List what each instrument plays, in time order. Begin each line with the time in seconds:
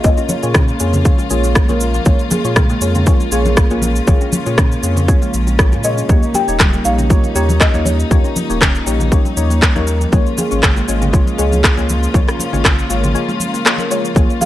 Already playing: string section C#3 G#3 A#3 F4
0.04 sub bass A#1, synth stab A#3 F4 G#4 C#5, kalimba F4, marimba D#5, kick, muted conga, high conga, shaker
0.17 kalimba C#4, shaker
0.29 marimba C#5, muted conga, high conga, shaker
0.43 sub bass A#2, synth stab A#3 F4 G#4 C#5, kalimba A#3, shaker
0.54 kalimba C#4, kick, cross-stick, muted conga, low conga, shaker
0.68 shaker
0.80 sub bass F2, synth stab A#3 F4 G#4 C#5, kalimba A#3, shaker
0.93 kalimba F3, muted conga, low conga, shaker
1.05 synth stab A#3 F4 G#4 C#5, kick, shaker
1.18 kalimba G#3, muted conga, shaker
1.30 sub bass A#1, synth stab A#3 F4 G#4 C#5, high conga, shaker
1.44 kalimba A#3, muted conga, shaker
1.55 kalimba A#3, kick, cross-stick, shaker
1.69 sub bass A#1, synth stab A#3 F4 G#4 C#5, kalimba A#4, muted conga, high conga, shaker
1.80 shaker
1.94 kalimba F3, shaker
2.06 sub bass A#1, synth stab A#3 F4 G#4 C#5, kalimba A#3, kick, muted conga, high conga, shaker
2.19 shaker
2.31 kalimba G#4, muted conga, high conga, shaker
2.45 sub bass A#2, synth stab A#3 F4 G#4 C#5, shaker
2.56 kalimba G#3, kick, cross-stick, muted conga, low conga, shaker
2.70 kalimba A#3, shaker
2.81 sub bass F2, synth stab A#3 F4 G#4 C#5, shaker
2.95 kalimba C#4, muted conga, low conga, shaker
3.06 synth stab A#3 F4 G#4 C#5, kalimba F4, kick, high conga, shaker
3.20 muted conga, shaker
3.32 sub bass A#1, synth stab A#3 F4 G#4 C#5, kalimba G#4, shaker
3.45 kalimba A#3, muted conga, high conga, shaker
3.57 kick, cross-stick, shaker
3.70 sub bass A#1, synth stab A#3 F4 G#4 C#5, kalimba A#3, muted conga, shaker
3.82 kalimba A#3, high conga, shaker
3.96 shaker
4.07 sub bass A#1, synth stab A#3 F4 G#4 C#5, kalimba F4, kick, muted conga, high conga, shaker
4.21 kalimba C#4, shaker
4.32 muted conga, high conga, shaker
4.46 sub bass A#2, synth stab A#3 F4 G#4 C#5, kalimba A#3, shaker
4.58 kalimba C#4, kick, cross-stick, muted conga, low conga, shaker
4.72 shaker
4.83 sub bass F2, synth stab A#3 F4 G#4 C#5, kalimba A#3, shaker
4.96 kalimba F3, muted conga, low conga, shaker
5.08 synth stab A#3 F4 G#4 C#5, kick, shaker
5.22 kalimba G#3, muted conga, shaker
5.34 sub bass A#1, high conga, shaker
5.47 kalimba C#4, muted conga, shaker
5.59 synth stab A#3 F4 G#4 C#5, kalimba F4, kick, cross-stick, shaker
5.72 sub bass A#2, kalimba F4, muted conga, high conga, shaker
5.84 synth stab A#3 F4 G#4 C#5, marimba D#5, shaker
5.98 kalimba C#4, shaker
6.09 sub bass D#2, string section G3 A#3 D#4, kalimba A#3, synth stab A#3 D#4 G4 C#5, kick, muted conga, high conga, shaker
6.23 shaker
6.34 kalimba G4, marimba G5, muted conga, high conga, shaker
6.48 sub bass D#1, synth stab A#3 D#4 G4 C#5, shaker
6.59 kalimba G3, kick, cross-stick, clap, muted conga, low conga, shaker
6.73 kalimba A#3, shaker
6.85 sub bass A#1, synth stab A#3 D#4 G4 C#5, marimba F5, shaker
6.99 kalimba C#4, muted conga, low conga, shaker
7.10 synth stab A#3 D#4 G4 C#5, kalimba F4, kick, high conga, shaker
7.24 muted conga, shaker
7.35 sub bass D#2, synth stab A#3 D#4 G4 C#5, kalimba G4, shaker
7.49 kalimba A#3, muted conga, high conga, shaker
7.60 marimba D#5, kick, cross-stick, clap, shaker
7.74 sub bass D#2, kalimba A#3, synth stab A#3 D#4 G4 C#5, muted conga, shaker
7.85 marimba C#5, high conga, shaker
8.00 shaker
8.11 sub bass D#2, synth stab A#3 D#4 G4 C#5, kalimba F4, kick, muted conga, high conga, shaker
8.24 kalimba C#4, shaker
8.36 muted conga, high conga, shaker
8.50 sub bass D#1, kalimba A#3, synth stab A#3 D#4 G4 C#5, shaker
8.61 kalimba C#4, kick, cross-stick, clap, muted conga, low conga, shaker
8.75 shaker
8.86 sub bass A#1, kalimba A#3, synth stab A#3 D#4 G4 C#5, shaker
9.00 kalimba F3, muted conga, low conga, shaker
9.12 synth stab A#3 D#4 G4 C#5, kick, shaker
9.25 kalimba G3, muted conga, shaker
9.37 sub bass D#2, synth stab A#3 D#4 G4 C#5, high conga, shaker
9.50 kalimba A#3, muted conga, shaker
9.62 kick, cross-stick, clap, shaker
9.76 sub bass D#2, synth stab A#3 D#4 G4 C#5, kalimba A#4, muted conga, high conga, shaker
9.87 kalimba A#3, shaker
10.01 kalimba F3, shaker
10.12 sub bass C#2, string section C#3 F3 G#3 F4, synth stab G#3 C#4 F4 C#5, kalimba A#3, kick, muted conga, high conga, shaker
10.26 shaker
10.38 kalimba G#4, muted conga, high conga, shaker
10.51 sub bass G#1, synth stab G#3 C#4 F4 C#5, shaker
10.63 kalimba G#3, kick, cross-stick, clap, muted conga, low conga, shaker
10.76 kalimba A#3, shaker
10.88 sub bass G#1, synth stab G#3 C#4 F4 C#5, shaker
11.02 kalimba C#4, muted conga, low conga, shaker
11.13 synth stab G#3 C#4 F4 C#5, kalimba F4, kick, high conga, shaker
11.27 muted conga, shaker
11.38 sub bass C#2, synth stab G#3 C#4 F4 C#5, kalimba G#4, shaker
11.52 kalimba A#3, muted conga, high conga, shaker
11.64 kick, cross-stick, clap, shaker
11.77 sub bass C#2, synth stab G#3 C#4 F4 C#5, kalimba A#3, muted conga, shaker
11.89 high conga, shaker
12.03 shaker
12.14 sub bass C#2, synth stab G#3 C#4 F4 C#5, string section A#3, kalimba F4, kick, muted conga, high conga, shaker
12.28 kalimba C#4, cross-stick, shaker
12.39 muted conga, high conga, shaker
12.53 sub bass G#1, synth stab G#3 C#4 F4 C#5, kalimba A#3, low conga, shaker
12.64 kick, cross-stick, clap, muted conga, low conga, shaker
12.79 shaker
12.90 sub bass G#1, synth stab G#3 C#4 F4 C#5, kalimba A#3, shaker
13.04 kalimba F3, muted conga, low conga, shaker
13.14 synth stab G#3 C#4 F4 C#5, shaker
13.29 kalimba G#3, muted conga, shaker
13.40 high conga, shaker
13.54 kalimba A#3, muted conga, shaker
13.65 synth stab G#3 C#4 F4 C#5, kalimba A#3, cross-stick, clap, shaker
13.78 kalimba A#4, muted conga, high conga, shaker
13.91 synth stab G#3 C#4 F4 C#5, kalimba A#3, marimba C#5, shaker
14.04 kalimba F3, shaker
14.15 sub bass A#1, string section G#3 A#3, synth stab A#3 F4 G#4 C#5, kalimba A#3, kick, muted conga, high conga, shaker
14.30 shaker
14.41 kalimba G#4, marimba F5, muted conga, high conga, shaker